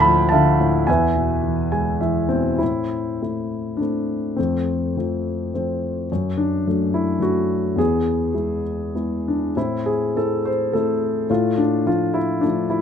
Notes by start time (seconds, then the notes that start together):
Already playing: D2 A2 D3 A4 E5 G5 A5
0.00 F3 B5
0.29 D3 E5 F5 A5
0.60 A2
0.87 E2 B4 E5 G#5
1.16 B2
1.43 E3
1.72 G#3 G#5
2.01 E3 E5
2.29 B2 C4
2.58 A2 C4 E4
3.22 A3 C4 E4
3.77 D4
3.81 A3 C4 E4
4.36 F2 A3 C4
4.97 F3 A3 C4
5.54 F3 A3 C4
6.12 F#2
6.37 D4
6.67 F#3 A3 D4
6.94 E4
7.20 F#3 A3 D4 F#4
7.76 E2 B3 G#4
8.34 G#3 B3 E4
8.95 G#3 B3 E4
9.28 D4
9.56 A2 C4 E4
9.86 G#4
10.16 A3 C4 E4 A4
10.45 C5
10.73 A3 C4 E4 A4
11.29 A2 A3 F4
11.58 D4
11.86 F3 A3 D4 F4
12.14 E4
12.41 F3 A3 D4
12.70 E4